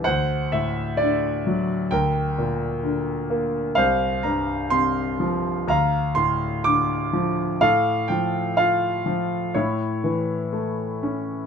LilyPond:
<<
  \new Staff \with { instrumentName = "Grand piano" } { \time 4/4 \key d \minor \tempo 4 = 62 << { fis''8 e''8 d''4 g''4 r4 | f''8 bes''8 c'''4 bes''8 c'''8 d'''4 | f''8 g''8 f''4 cis''4. r8 | } \\ { c''2 bes'2 | c''2 f''2 | a'2 e'2 | } >> }
  \new Staff \with { instrumentName = "Grand piano" } { \clef bass \time 4/4 \key d \minor d,8 a,8 d8 fis8 d,8 bes,8 d8 bes8 | c,8 g,8 c8 f8 d,8 a,8 d8 f8 | a,8 f8 f'8 f8 a,8 e8 a8 cis'8 | }
>>